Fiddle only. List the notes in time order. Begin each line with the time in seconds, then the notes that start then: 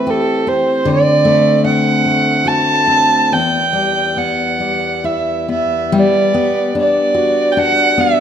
Already playing: B4
0.10 A4
0.48 C5
0.89 D5
1.66 F#5
2.47 A5
3.33 G5
4.18 F#5
5.05 E5
5.51 E5
5.96 D5
6.80 D5
7.52 G5
7.58 F#5
8.01 E5